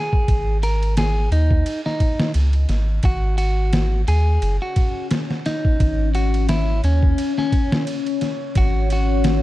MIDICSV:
0, 0, Header, 1, 5, 480
1, 0, Start_track
1, 0, Tempo, 689655
1, 194, Time_signature, 4, 2, 24, 8
1, 6559, End_track
2, 0, Start_track
2, 0, Title_t, "Ambient pad"
2, 0, Program_c, 0, 92
2, 2116, Note_on_c, 0, 73, 88
2, 2119, Note_on_c, 0, 61, 84
2, 6559, Note_off_c, 0, 61, 0
2, 6559, Note_off_c, 0, 73, 0
2, 6559, End_track
3, 0, Start_track
3, 0, Title_t, "Clean electric guitar"
3, 0, Program_c, 1, 27
3, 0, Note_on_c, 1, 68, 84
3, 394, Note_off_c, 1, 68, 0
3, 441, Note_on_c, 1, 70, 81
3, 656, Note_off_c, 1, 70, 0
3, 682, Note_on_c, 1, 68, 83
3, 897, Note_off_c, 1, 68, 0
3, 921, Note_on_c, 1, 63, 85
3, 1252, Note_off_c, 1, 63, 0
3, 1294, Note_on_c, 1, 63, 85
3, 1605, Note_off_c, 1, 63, 0
3, 2123, Note_on_c, 1, 66, 92
3, 2338, Note_off_c, 1, 66, 0
3, 2351, Note_on_c, 1, 66, 87
3, 2790, Note_off_c, 1, 66, 0
3, 2841, Note_on_c, 1, 68, 88
3, 3171, Note_off_c, 1, 68, 0
3, 3215, Note_on_c, 1, 66, 85
3, 3526, Note_off_c, 1, 66, 0
3, 3800, Note_on_c, 1, 63, 90
3, 4235, Note_off_c, 1, 63, 0
3, 4280, Note_on_c, 1, 66, 82
3, 4496, Note_off_c, 1, 66, 0
3, 4517, Note_on_c, 1, 64, 82
3, 4735, Note_off_c, 1, 64, 0
3, 4764, Note_on_c, 1, 61, 86
3, 5093, Note_off_c, 1, 61, 0
3, 5140, Note_on_c, 1, 61, 96
3, 5448, Note_off_c, 1, 61, 0
3, 5969, Note_on_c, 1, 66, 96
3, 6180, Note_off_c, 1, 66, 0
3, 6212, Note_on_c, 1, 66, 90
3, 6559, Note_off_c, 1, 66, 0
3, 6559, End_track
4, 0, Start_track
4, 0, Title_t, "Sub bass"
4, 0, Program_c, 2, 38
4, 197, Note_on_c, 2, 32, 89
4, 895, Note_off_c, 2, 32, 0
4, 913, Note_on_c, 2, 39, 79
4, 1128, Note_off_c, 2, 39, 0
4, 1634, Note_on_c, 2, 37, 80
4, 1849, Note_off_c, 2, 37, 0
4, 1870, Note_on_c, 2, 32, 82
4, 2087, Note_off_c, 2, 32, 0
4, 2114, Note_on_c, 2, 32, 97
4, 2814, Note_off_c, 2, 32, 0
4, 2837, Note_on_c, 2, 39, 78
4, 3050, Note_off_c, 2, 39, 0
4, 3076, Note_on_c, 2, 30, 85
4, 3193, Note_off_c, 2, 30, 0
4, 4040, Note_on_c, 2, 32, 99
4, 4737, Note_off_c, 2, 32, 0
4, 4758, Note_on_c, 2, 39, 81
4, 4971, Note_off_c, 2, 39, 0
4, 5953, Note_on_c, 2, 32, 96
4, 6559, Note_off_c, 2, 32, 0
4, 6559, End_track
5, 0, Start_track
5, 0, Title_t, "Drums"
5, 89, Note_on_c, 9, 36, 89
5, 158, Note_off_c, 9, 36, 0
5, 196, Note_on_c, 9, 36, 94
5, 197, Note_on_c, 9, 51, 77
5, 266, Note_off_c, 9, 36, 0
5, 266, Note_off_c, 9, 51, 0
5, 438, Note_on_c, 9, 51, 67
5, 508, Note_off_c, 9, 51, 0
5, 575, Note_on_c, 9, 51, 41
5, 644, Note_off_c, 9, 51, 0
5, 675, Note_on_c, 9, 51, 87
5, 679, Note_on_c, 9, 38, 112
5, 744, Note_off_c, 9, 51, 0
5, 748, Note_off_c, 9, 38, 0
5, 918, Note_on_c, 9, 51, 67
5, 987, Note_off_c, 9, 51, 0
5, 1048, Note_on_c, 9, 36, 93
5, 1118, Note_off_c, 9, 36, 0
5, 1155, Note_on_c, 9, 51, 80
5, 1225, Note_off_c, 9, 51, 0
5, 1294, Note_on_c, 9, 38, 49
5, 1364, Note_off_c, 9, 38, 0
5, 1393, Note_on_c, 9, 36, 83
5, 1393, Note_on_c, 9, 51, 59
5, 1463, Note_off_c, 9, 36, 0
5, 1463, Note_off_c, 9, 51, 0
5, 1528, Note_on_c, 9, 38, 110
5, 1598, Note_off_c, 9, 38, 0
5, 1630, Note_on_c, 9, 51, 82
5, 1699, Note_off_c, 9, 51, 0
5, 1761, Note_on_c, 9, 51, 37
5, 1831, Note_off_c, 9, 51, 0
5, 1870, Note_on_c, 9, 51, 60
5, 1875, Note_on_c, 9, 38, 50
5, 1940, Note_off_c, 9, 51, 0
5, 1944, Note_off_c, 9, 38, 0
5, 2107, Note_on_c, 9, 51, 78
5, 2112, Note_on_c, 9, 36, 95
5, 2177, Note_off_c, 9, 51, 0
5, 2181, Note_off_c, 9, 36, 0
5, 2352, Note_on_c, 9, 51, 67
5, 2421, Note_off_c, 9, 51, 0
5, 2594, Note_on_c, 9, 51, 84
5, 2598, Note_on_c, 9, 38, 111
5, 2663, Note_off_c, 9, 51, 0
5, 2668, Note_off_c, 9, 38, 0
5, 2837, Note_on_c, 9, 51, 65
5, 2907, Note_off_c, 9, 51, 0
5, 3076, Note_on_c, 9, 51, 76
5, 3146, Note_off_c, 9, 51, 0
5, 3313, Note_on_c, 9, 51, 64
5, 3316, Note_on_c, 9, 36, 82
5, 3382, Note_off_c, 9, 51, 0
5, 3385, Note_off_c, 9, 36, 0
5, 3554, Note_on_c, 9, 51, 80
5, 3558, Note_on_c, 9, 38, 109
5, 3623, Note_off_c, 9, 51, 0
5, 3628, Note_off_c, 9, 38, 0
5, 3692, Note_on_c, 9, 38, 50
5, 3762, Note_off_c, 9, 38, 0
5, 3798, Note_on_c, 9, 51, 62
5, 3802, Note_on_c, 9, 38, 50
5, 3867, Note_off_c, 9, 51, 0
5, 3871, Note_off_c, 9, 38, 0
5, 3931, Note_on_c, 9, 36, 89
5, 4000, Note_off_c, 9, 36, 0
5, 4037, Note_on_c, 9, 36, 102
5, 4038, Note_on_c, 9, 51, 76
5, 4107, Note_off_c, 9, 36, 0
5, 4108, Note_off_c, 9, 51, 0
5, 4277, Note_on_c, 9, 51, 62
5, 4347, Note_off_c, 9, 51, 0
5, 4413, Note_on_c, 9, 51, 43
5, 4482, Note_off_c, 9, 51, 0
5, 4514, Note_on_c, 9, 51, 83
5, 4518, Note_on_c, 9, 38, 107
5, 4584, Note_off_c, 9, 51, 0
5, 4588, Note_off_c, 9, 38, 0
5, 4758, Note_on_c, 9, 51, 69
5, 4828, Note_off_c, 9, 51, 0
5, 4890, Note_on_c, 9, 36, 87
5, 4959, Note_off_c, 9, 36, 0
5, 4998, Note_on_c, 9, 51, 83
5, 5067, Note_off_c, 9, 51, 0
5, 5136, Note_on_c, 9, 38, 47
5, 5205, Note_off_c, 9, 38, 0
5, 5236, Note_on_c, 9, 36, 91
5, 5238, Note_on_c, 9, 51, 59
5, 5306, Note_off_c, 9, 36, 0
5, 5307, Note_off_c, 9, 51, 0
5, 5376, Note_on_c, 9, 38, 112
5, 5445, Note_off_c, 9, 38, 0
5, 5477, Note_on_c, 9, 51, 81
5, 5547, Note_off_c, 9, 51, 0
5, 5613, Note_on_c, 9, 51, 44
5, 5683, Note_off_c, 9, 51, 0
5, 5716, Note_on_c, 9, 51, 63
5, 5720, Note_on_c, 9, 38, 49
5, 5785, Note_off_c, 9, 51, 0
5, 5789, Note_off_c, 9, 38, 0
5, 5953, Note_on_c, 9, 51, 84
5, 5955, Note_on_c, 9, 36, 102
5, 6023, Note_off_c, 9, 51, 0
5, 6025, Note_off_c, 9, 36, 0
5, 6196, Note_on_c, 9, 51, 67
5, 6265, Note_off_c, 9, 51, 0
5, 6432, Note_on_c, 9, 51, 82
5, 6436, Note_on_c, 9, 38, 114
5, 6501, Note_off_c, 9, 51, 0
5, 6506, Note_off_c, 9, 38, 0
5, 6559, End_track
0, 0, End_of_file